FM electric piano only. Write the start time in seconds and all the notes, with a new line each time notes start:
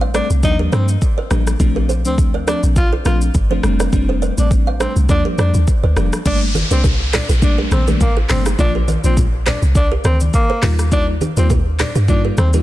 Already playing: G3 A3 C4 D4
0.14 G3 A3 C4 D4
0.43 F3 G3 A#3 D4
0.72 F3 G3 A#3 D4
1.31 F3 G3 A#3 D4
1.60 F3 A3 C4 D4
2.05 F3 A3 C4 D4
2.47 F3 A3 C4 D4
3.05 F3 A3 C4 D4
3.50 F3 A3 C4 D4
3.63 G3 A3 C4 D4
3.92 G3 A3 C4 D4
4.37 G3 A3 C4 D4
4.80 G3 A3 C4 D4
5.09 F3 G3 A#3 D4
5.38 F3 G3 A#3 D4
5.96 F3 G3 A#3 D4
6.25 G3 A3 A#3 D4
6.71 G3 A3 A#3 D4
7.42 G3 A3 A#3 D4
7.87 G3 A3 A#3 D4
8.29 G3 A3 A#3 D4
8.58 F3 A#3 D4 F4
9.04 F3 A#3 D4 F4
10.62 G3 A#3 D#4 F4
10.92 G3 A#3 D#4 F4
11.37 G3 A#3 D#4 F4
12.08 G3 A#3 D#4 F4
12.53 G3 A#3 D#4 F4